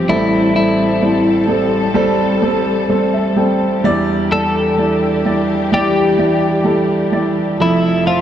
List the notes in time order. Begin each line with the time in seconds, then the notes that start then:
Already playing: F3 C4 E4 G4
0.08 A1 A2 G3 C4 E4 A4
0.55 G3 C4 E4 A4
1.02 G3 C4 C5
1.48 G3 C4 A4
1.94 G3 C4 A4
2.42 G3 C4 A4
2.89 G3 C4 A4 C5
3.14 E5
3.36 G3 C4 A4 G5
3.84 E2 E3 G3 D4 E4 G4 D5
4.31 G3 E4 A4 D5
4.78 G3 E4 D5
5.25 G3 E4 D5
5.72 G3 E4 G4 D5
6.18 G3 E4 D5
6.64 G3 E4 A4
7.12 G3 E4 D5
7.58 F1 F2 F3 E4 A4 E5
8.06 F3 F4 C5 E5